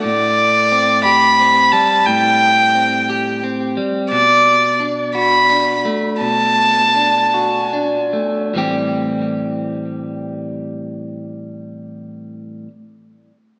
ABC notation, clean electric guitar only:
X:1
M:6/8
L:1/8
Q:3/8=55
K:Ador
V:1 name="Clean electric guitar"
A,,2 C G C G, | A,,2 C G C G, | B,,2 D F D A, | B,,2 D F D A, |
[A,,E,G,CG]6- | [A,,E,G,CG]6 |]